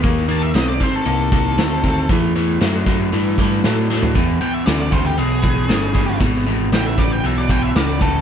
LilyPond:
<<
  \new Staff \with { instrumentName = "Lead electric guitar" } { \time 4/4 \key e \dorian \tempo 4 = 117 r8 a''16 e''16 dis''16 d''16 c''16 a'16 a'2 | r1 | r8 g''16 e''16 d''16 d''16 c''16 g'16 gis'2 | r4 g''16 e''16 d''16 g''16 e''16 d''16 g''16 e''16 d''8 a'8 | }
  \new Staff \with { instrumentName = "Overdriven electric guitar" } { \clef bass \time 4/4 \key e \dorian <dis ais>8 <dis ais>8 <dis c'>8 <dis c'>8 <dis ais>8 <dis ais>8 <dis c'>8 <dis c'>8 | <a, e>8 <a, e>8 <a, fis>8 <a, fis>8 <a, e>8 <a, e>8 <a, fis>8 <a, fis>8 | <e, b,>8 <e, b,>8 <e, cis>8 <e, cis>8 <e, b,>8 <e, b,>8 <e, cis>8 <e, cis>8 | <e, b,>8 <e, b,>8 <e, cis>8 <e, cis>8 <e, b,>8 <e, b,>8 <e, cis>8 <e, cis>8 | }
  \new Staff \with { instrumentName = "Picked electric bass" } { \clef bass \time 4/4 \key e \dorian dis,4 b,,8 r8 c,4 d,4 | e,4 fis,4 g,4 a,4 | e,8 r8 d,4 b,,4 g,,4 | gis,,4 a,,4 b,,4 cis,4 | }
  \new DrumStaff \with { instrumentName = "Drums" } \drummode { \time 4/4 <hho bd>16 sn8. <hho sn>8 bd8 hho8 bd8 <hho sn>8 bd8 | <hho bd>4 <hho sn>8 bd8 hho8 bd8 <hho sn>8 sn16 tomfh16 | <hho bd>4 <hho sn>8 bd8 hho8 bd8 <hho sn>8 bd8 | <hho bd>16 sn8. <hho sn>8 bd8 hho8 bd8 <hho sn>8 bd8 | }
>>